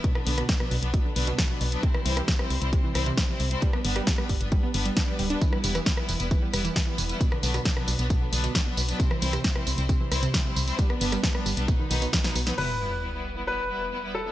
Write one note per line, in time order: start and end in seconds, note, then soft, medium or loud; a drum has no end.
0.04 0.07 B2 loud
0.04 0.20 F#3 medium
0.04 0.20 B3 medium
0.04 0.20 D4 medium
0.04 0.20 B4 medium
0.04 kick loud
0.04 closed hi-hat medium
0.15 0.21 D3 medium
0.15 cross-stick medium
0.26 0.43 B1 loud
0.26 0.34 D3 medium
0.26 0.42 F#3 medium
0.26 0.42 B3 medium
0.26 0.42 D4 medium
0.26 0.42 B4 medium
0.26 open hi-hat loud
0.38 0.46 B2 loud
0.38 cross-stick medium
0.38 closed hi-hat medium
0.49 0.57 F#3 medium
0.49 0.57 B3 medium
0.49 0.57 D4 medium
0.49 0.57 B4 medium
0.49 kick loud
0.49 snare loud
0.49 closed hi-hat medium
0.60 0.63 B2 medium
0.60 0.76 F#3 medium
0.60 0.76 B3 medium
0.60 0.76 D4 medium
0.60 0.76 B4 medium
0.60 cross-stick medium
0.71 0.79 B1 medium
0.71 0.75 B2 medium
0.71 open hi-hat medium
0.82 0.99 B1 medium
0.82 0.90 F#3 medium
0.82 0.90 B3 medium
0.82 0.90 D4 medium
0.82 0.90 B4 medium
0.82 closed hi-hat medium
0.94 0.97 B2 loud
0.94 1.09 F#3 medium
0.94 1.09 B3 medium
0.94 1.09 D4 medium
0.94 1.09 B4 medium
0.94 kick loud
0.94 closed hi-hat medium
1.05 1.10 D3 medium
1.16 1.32 B1 loud
1.16 1.24 D3 medium
1.16 1.32 F#3 medium
1.16 1.32 B3 medium
1.16 1.32 D4 medium
1.16 1.32 B4 medium
1.16 open hi-hat loud
1.27 1.35 B2 loud
1.27 closed hi-hat medium
1.38 1.46 F#3 medium
1.38 1.46 B3 medium
1.38 1.46 D4 medium
1.38 1.46 B4 medium
1.38 kick loud
1.38 snare loud
1.38 closed hi-hat medium
1.50 1.53 B2 medium
1.50 1.65 F#3 medium
1.50 1.65 B3 medium
1.50 1.65 D4 medium
1.50 1.65 B4 medium
1.61 1.77 B1 medium
1.61 1.64 B2 medium
1.61 open hi-hat loud
1.72 1.80 F#3 medium
1.72 1.80 B3 medium
1.72 1.80 D4 medium
1.72 1.80 B4 medium
1.72 closed hi-hat medium
1.83 1.86 C3 loud
1.83 1.99 G3 medium
1.83 1.99 C4 medium
1.83 1.99 E4 medium
1.83 1.99 C5 medium
1.83 kick loud
1.83 closed hi-hat medium
1.94 2.00 E3 medium
1.94 cross-stick medium
2.06 2.22 C2 loud
2.06 2.14 E3 medium
2.06 2.21 G3 medium
2.06 2.21 C4 medium
2.06 2.21 E4 medium
2.06 2.21 C5 medium
2.06 open hi-hat loud
2.17 2.25 C3 loud
2.17 cross-stick medium
2.17 closed hi-hat medium
2.28 2.36 G3 medium
2.28 2.36 C4 medium
2.28 2.36 E4 medium
2.28 2.36 C5 medium
2.28 kick loud
2.28 snare loud
2.28 closed hi-hat medium
2.39 2.42 C3 medium
2.39 2.55 G3 medium
2.39 2.55 C4 medium
2.39 2.55 E4 medium
2.39 2.55 C5 medium
2.39 cross-stick medium
2.50 2.58 C2 medium
2.50 2.54 C3 medium
2.50 open hi-hat medium
2.61 2.78 C2 medium
2.61 2.69 G3 medium
2.61 2.69 C4 medium
2.61 2.69 E4 medium
2.61 2.69 C5 medium
2.61 closed hi-hat medium
2.73 2.76 C3 loud
2.73 2.88 G3 medium
2.73 2.88 C4 medium
2.73 2.88 E4 medium
2.73 2.88 C5 medium
2.73 kick loud
2.73 closed hi-hat medium
2.84 2.89 E3 medium
2.95 3.11 C2 medium
2.95 3.03 E3 medium
2.95 3.11 G3 medium
2.95 3.11 C4 medium
2.95 3.11 E4 medium
2.95 3.11 C5 medium
2.95 cross-stick medium
2.95 open hi-hat loud
3.06 3.14 C3 loud
3.06 closed hi-hat medium
3.18 3.25 G3 medium
3.18 3.25 C4 medium
3.18 3.25 E4 medium
3.18 3.25 C5 medium
3.18 kick loud
3.18 snare loud
3.18 closed hi-hat medium
3.29 3.32 C3 medium
3.29 3.45 G3 medium
3.29 3.45 C4 medium
3.29 3.45 E4 medium
3.29 3.45 C5 medium
3.40 3.56 C2 medium
3.40 3.43 C3 medium
3.40 open hi-hat loud
3.51 3.59 G3 medium
3.51 3.59 C4 medium
3.51 3.59 E4 medium
3.51 3.59 C5 medium
3.51 closed hi-hat medium
3.62 3.78 G3 medium
3.62 3.66 G3 loud
3.62 3.78 B3 medium
3.62 3.78 D4 medium
3.62 3.78 B4 medium
3.62 kick loud
3.62 closed hi-hat medium
3.73 3.79 B3 medium
3.73 cross-stick medium
3.85 4.01 G1 loud
3.85 4.00 G3 medium
3.85 4.00 B3 medium
3.85 3.93 B3 medium
3.85 4.00 D4 medium
3.85 4.00 B4 medium
3.85 open hi-hat loud
3.96 4.04 G3 loud
3.96 cross-stick medium
3.96 closed hi-hat medium
4.07 4.15 G3 medium
4.07 4.15 B3 medium
4.07 4.15 D4 medium
4.07 4.15 B4 medium
4.07 kick loud
4.07 snare loud
4.07 closed hi-hat medium
4.18 4.22 G3 medium
4.18 4.34 G3 medium
4.18 4.34 B3 medium
4.18 4.34 D4 medium
4.18 4.34 B4 medium
4.18 cross-stick medium
4.29 4.38 G1 medium
4.29 4.33 G3 medium
4.29 kick medium
4.29 open hi-hat medium
4.41 4.57 G1 medium
4.41 4.49 G3 medium
4.41 4.49 B3 medium
4.41 4.49 D4 medium
4.41 4.49 B4 medium
4.41 closed hi-hat medium
4.52 4.55 G3 medium
4.52 4.68 G3 medium
4.52 4.68 B3 medium
4.52 4.68 D4 medium
4.52 4.68 B4 medium
4.52 kick loud
4.52 closed hi-hat medium
4.63 4.68 B3 medium
4.74 4.90 G1 loud
4.74 4.90 G3 medium
4.74 4.80 B3 medium
4.74 4.90 B3 medium
4.74 4.90 D4 medium
4.74 4.90 B4 medium
4.74 open hi-hat loud
4.86 4.93 G3 medium
4.86 closed hi-hat medium
4.97 5.05 G3 medium
4.97 5.05 B3 medium
4.97 5.00 D4 medium
4.97 5.05 D4 medium
4.97 5.05 B4 medium
4.97 kick loud
4.97 snare loud
4.97 closed hi-hat medium
5.08 5.11 G3 loud
5.08 5.24 G3 medium
5.08 5.24 B3 medium
5.08 5.24 D4 medium
5.08 5.24 B4 medium
5.19 5.35 D1 medium
5.19 5.27 G3 loud
5.19 open hi-hat loud
5.30 5.38 G3 medium
5.30 5.38 B3 medium
5.30 5.33 D4 loud
5.30 5.38 D4 medium
5.30 5.38 B4 medium
5.30 closed hi-hat medium
5.41 5.45 E3 loud
5.41 5.57 G3 medium
5.41 5.57 B3 medium
5.41 5.57 E4 medium
5.41 5.57 B4 medium
5.41 kick loud
5.41 closed hi-hat medium
5.41 tambourine soft
5.53 5.58 G3 medium
5.53 cross-stick medium
5.64 5.80 E1 loud
5.64 5.72 G3 medium
5.64 5.80 G3 medium
5.64 5.80 B3 medium
5.64 5.80 E4 medium
5.64 5.80 B4 medium
5.64 open hi-hat loud
5.64 tambourine medium
5.75 5.83 E3 loud
5.75 cross-stick medium
5.75 closed hi-hat medium
5.75 tambourine soft
5.86 5.94 G3 medium
5.86 5.94 B3 medium
5.86 5.94 E4 medium
5.86 5.94 B4 medium
5.86 kick loud
5.86 snare loud
5.86 closed hi-hat medium
5.86 tambourine soft
5.97 6.01 E3 medium
5.97 6.13 G3 medium
5.97 6.13 B3 medium
5.97 6.13 E4 medium
5.97 6.13 B4 medium
5.97 cross-stick medium
6.09 6.17 E1 medium
6.09 6.12 E3 medium
6.09 open hi-hat medium
6.09 tambourine medium
6.20 6.36 E1 medium
6.20 6.28 G3 medium
6.20 6.28 B3 medium
6.20 6.28 E4 medium
6.20 6.28 B4 medium
6.20 closed hi-hat medium
6.20 tambourine soft
6.31 6.34 E3 loud
6.31 6.47 G3 medium
6.31 6.47 B3 medium
6.31 6.47 E4 medium
6.31 6.47 B4 medium
6.31 kick loud
6.31 closed hi-hat medium
6.31 tambourine soft
6.42 6.47 G3 medium
6.53 6.69 E1 medium
6.53 6.61 G3 medium
6.53 6.69 G3 medium
6.53 6.69 B3 medium
6.53 6.69 E4 medium
6.53 6.69 B4 medium
6.53 cross-stick medium
6.53 open hi-hat loud
6.53 tambourine medium
6.65 6.73 E3 loud
6.65 closed hi-hat medium
6.65 tambourine soft
6.76 6.84 G3 medium
6.76 6.84 B3 medium
6.76 6.84 E4 medium
6.76 6.84 B4 medium
6.76 kick loud
6.76 snare loud
6.76 closed hi-hat medium
6.76 tambourine soft
6.87 6.90 E3 medium
6.87 7.03 G3 medium
6.87 7.03 B3 medium
6.87 7.03 E4 medium
6.87 7.03 B4 medium
6.98 7.14 E1 medium
6.98 7.01 E3 medium
6.98 open hi-hat medium
6.98 tambourine medium
7.09 7.17 G3 medium
7.09 7.17 B3 medium
7.09 7.17 E4 medium
7.09 7.17 B4 medium
7.09 closed hi-hat medium
7.09 tambourine soft
7.21 7.24 B2 loud
7.21 7.36 F#3 medium
7.21 7.36 B3 medium
7.21 7.36 D4 medium
7.21 7.36 B4 medium
7.21 kick loud
7.21 closed hi-hat medium
7.21 tambourine soft
7.32 7.37 D3 medium
7.32 cross-stick medium
7.43 7.59 B1 loud
7.43 7.51 D3 medium
7.43 7.59 F#3 medium
7.43 7.59 B3 medium
7.43 7.59 D4 medium
7.43 7.59 B4 medium
7.43 open hi-hat loud
7.43 tambourine medium
7.54 7.62 B2 loud
7.54 cross-stick medium
7.54 closed hi-hat medium
7.54 tambourine soft
7.65 7.73 F#3 medium
7.65 7.73 B3 medium
7.65 7.73 D4 medium
7.65 7.73 B4 medium
7.65 kick loud
7.65 snare loud
7.65 closed hi-hat medium
7.65 tambourine soft
7.77 7.80 B2 medium
7.77 7.92 F#3 medium
7.77 7.92 B3 medium
7.77 7.92 D4 medium
7.77 7.92 B4 medium
7.77 cross-stick medium
7.88 7.96 B1 medium
7.88 7.91 B2 medium
7.88 open hi-hat medium
7.88 tambourine medium
7.99 8.15 B1 medium
7.99 8.07 F#3 medium
7.99 8.07 B3 medium
7.99 8.07 D4 medium
7.99 8.07 B4 medium
7.99 closed hi-hat medium
7.99 tambourine soft
8.10 8.13 B2 medium
8.10 8.26 F#3 medium
8.10 8.26 B3 medium
8.10 8.26 D4 medium
8.10 8.26 B4 medium
8.10 kick loud
8.10 closed hi-hat medium
8.10 tambourine soft
8.21 8.27 D3 medium
8.32 8.49 B1 loud
8.32 8.40 D3 medium
8.32 8.48 F#3 medium
8.32 8.48 B3 medium
8.32 8.48 D4 medium
8.32 8.48 B4 medium
8.32 open hi-hat loud
8.32 tambourine medium
8.44 8.52 B2 loud
8.44 closed hi-hat medium
8.44 tambourine soft
8.55 8.63 F#3 medium
8.55 8.63 B3 medium
8.55 8.63 D4 medium
8.55 8.63 B4 medium
8.55 kick loud
8.55 snare loud
8.55 closed hi-hat medium
8.55 tambourine soft
8.66 8.69 B2 medium
8.66 8.82 F#3 medium
8.66 8.82 B3 medium
8.66 8.82 D4 medium
8.66 8.82 B4 medium
8.77 8.93 B1 medium
8.77 8.80 B2 medium
8.77 open hi-hat medium
8.77 tambourine medium
8.89 8.96 F#3 medium
8.89 8.96 B3 medium
8.89 8.96 D4 medium
8.89 8.96 B4 medium
8.89 closed hi-hat medium
8.89 tambourine soft
9.00 9.03 C3 loud
9.00 9.15 G3 medium
9.00 9.15 C4 medium
9.00 9.15 E4 medium
9.00 9.15 C5 medium
9.00 kick loud
9.00 closed hi-hat medium
9.00 tambourine soft
9.11 9.16 E3 medium
9.11 cross-stick medium
9.22 9.38 C2 loud
9.22 9.30 E3 medium
9.22 9.38 G3 medium
9.22 9.38 C4 medium
9.22 9.38 E4 medium
9.22 9.38 C5 medium
9.22 open hi-hat loud
9.22 tambourine medium
9.33 9.41 C3 loud
9.33 cross-stick medium
9.33 closed hi-hat medium
9.33 tambourine soft
9.44 9.52 G3 medium
9.44 9.52 C4 medium
9.44 9.52 E4 medium
9.44 9.52 C5 medium
9.44 kick loud
9.44 snare loud
9.44 closed hi-hat medium
9.44 tambourine soft
9.56 9.59 C3 medium
9.56 9.71 G3 medium
9.56 9.71 C4 medium
9.56 9.71 E4 medium
9.56 9.71 C5 medium
9.56 cross-stick medium
9.67 9.75 C2 medium
9.67 9.70 C3 medium
9.67 open hi-hat medium
9.67 tambourine medium
9.78 9.94 C2 medium
9.78 9.86 G3 medium
9.78 9.86 C4 medium
9.78 9.86 E4 medium
9.78 9.86 C5 medium
9.78 closed hi-hat medium
9.78 tambourine soft
9.89 9.92 C3 loud
9.89 10.05 G3 medium
9.89 10.05 C4 medium
9.89 10.05 E4 medium
9.89 10.05 C5 medium
9.89 kick loud
9.89 closed hi-hat medium
9.89 tambourine soft
10.00 10.06 E3 medium
10.12 10.28 C2 loud
10.12 10.20 E3 medium
10.12 10.27 G3 medium
10.12 10.27 C4 medium
10.12 10.27 E4 medium
10.12 10.27 C5 medium
10.12 cross-stick medium
10.12 open hi-hat loud
10.12 tambourine medium
10.23 10.31 C3 loud
10.23 closed hi-hat medium
10.23 tambourine soft
10.34 10.42 G3 medium
10.34 10.42 C4 medium
10.34 10.42 E4 medium
10.34 10.42 C5 medium
10.34 kick loud
10.34 snare loud
10.34 closed hi-hat medium
10.34 tambourine soft
10.45 10.48 C3 medium
10.45 10.61 G3 medium
10.45 10.61 C4 medium
10.45 10.61 E4 medium
10.45 10.61 C5 medium
10.56 10.72 C2 medium
10.56 10.60 C3 medium
10.56 open hi-hat medium
10.56 tambourine medium
10.67 10.75 G3 medium
10.67 10.75 C4 medium
10.67 10.75 E4 medium
10.67 10.75 C5 medium
10.67 closed hi-hat medium
10.67 tambourine soft
10.78 10.94 G3 medium
10.78 10.82 G3 loud
10.78 10.94 B3 medium
10.78 10.94 D4 medium
10.78 10.94 B4 medium
10.78 kick loud
10.78 closed hi-hat medium
10.78 tambourine soft
10.90 10.95 B3 medium
10.90 cross-stick medium
11.01 11.17 G1 loud
11.01 11.17 G3 medium
11.01 11.17 B3 medium
11.01 11.09 B3 medium
11.01 11.17 D4 medium
11.01 11.17 B4 medium
11.01 open hi-hat loud
11.01 tambourine medium
11.12 11.20 G3 loud
11.12 cross-stick medium
11.12 closed hi-hat medium
11.12 tambourine soft
11.23 11.31 G3 medium
11.23 11.31 B3 medium
11.23 11.31 D4 medium
11.23 11.31 B4 medium
11.23 kick loud
11.23 snare loud
11.23 closed hi-hat medium
11.23 tambourine soft
11.35 11.50 G3 medium
11.35 11.38 G3 medium
11.35 11.50 B3 medium
11.35 11.50 D4 medium
11.35 11.50 B4 medium
11.35 cross-stick medium
11.46 11.54 G1 medium
11.46 11.49 G3 medium
11.46 open hi-hat medium
11.46 tambourine medium
11.57 11.73 B1 medium
11.57 11.65 G3 medium
11.57 11.65 B3 medium
11.57 11.65 D4 medium
11.57 11.65 B4 medium
11.57 closed hi-hat medium
11.57 tambourine soft
11.68 11.71 B2 loud
11.68 11.84 F#3 medium
11.68 11.84 B3 medium
11.68 11.84 D#4 medium
11.68 11.84 B4 medium
11.68 kick loud
11.68 closed hi-hat medium
11.68 tambourine soft
11.79 11.85 D#3 medium
11.91 12.07 B1 loud
11.91 11.99 D#3 medium
11.91 12.06 F#3 medium
11.91 12.06 B3 medium
11.91 12.06 D#4 medium
11.91 12.06 B4 medium
11.91 open hi-hat loud
11.91 tambourine medium
12.02 12.10 B2 loud
12.02 closed hi-hat medium
12.02 tambourine soft
12.13 12.21 F#3 medium
12.13 12.21 B3 medium
12.13 12.21 D#4 medium
12.13 12.21 B4 medium
12.13 kick loud
12.13 snare loud
12.13 closed hi-hat medium
12.24 12.28 B2 medium
12.24 12.40 F#3 medium
12.24 12.40 B3 medium
12.24 12.40 D#4 medium
12.24 12.40 B4 medium
12.24 snare medium
12.35 12.52 B1 loud
12.35 12.39 B2 medium
12.35 open hi-hat medium
12.35 tambourine medium
12.46 12.54 F#3 medium
12.46 12.54 B3 medium
12.46 12.54 D#4 medium
12.46 12.54 B4 medium
12.46 snare medium
12.46 closed hi-hat medium
12.46 tambourine soft
12.58 14.32 E1 medium
12.58 12.74 G3 medium
12.58 12.74 B3 medium
12.58 12.74 E4 medium
12.58 12.74 B4 medium
12.58 13.38 B4 medium
12.58 crash medium
12.58 sub drop medium
12.80 12.96 G3 medium
12.80 12.96 B3 medium
12.80 12.96 E4 medium
12.80 12.96 B4 medium
13.03 13.10 G3 medium
13.03 13.10 B3 medium
13.03 13.10 E4 medium
13.03 13.10 B4 medium
13.14 13.30 G3 medium
13.14 13.30 B3 medium
13.14 13.30 E4 medium
13.14 13.30 B4 medium
13.36 13.44 G3 medium
13.36 13.44 B3 medium
13.36 13.44 E4 medium
13.36 13.44 B4 medium
13.47 13.63 G3 medium
13.47 13.63 B3 medium
13.47 13.63 E4 medium
13.47 13.63 B4 medium
13.47 14.06 B4 medium
13.70 13.86 G3 medium
13.70 13.86 B3 medium
13.70 13.86 E4 medium
13.70 13.85 B4 medium
13.92 14.00 G3 medium
13.92 14.00 B3 medium
13.92 14.00 E4 medium
13.92 14.00 B4 medium
14.03 14.19 G3 medium
14.03 14.19 B3 medium
14.03 14.19 E4 medium
14.03 14.19 B4 medium
14.15 14.32 A4 medium
14.26 14.32 G3 medium
14.26 14.32 B3 medium
14.26 14.32 E4 medium
14.26 14.32 B4 medium